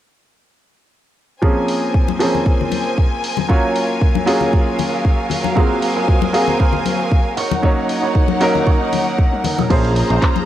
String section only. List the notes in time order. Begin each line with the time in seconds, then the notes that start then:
1.42 A#4 C5 G#5
3.49 F#3 F5
5.55 C5 G#5
7.37 D#4 C#5 F#5
9.71 G#4 C5 A#5